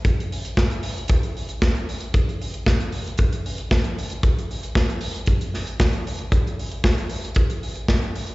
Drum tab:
HH |xxox-xoxxxox-xox|xxox-xoxxxox-xox|xxox-xoxxxox-xox|xxox-xoxxxox-xox|
SD |----o-------o---|----o-------o---|----o-----o-o---|----o-------o---|
BD |o---o---o---o---|o---o---o---o---|o---o---o---o---|o---o---o---o---|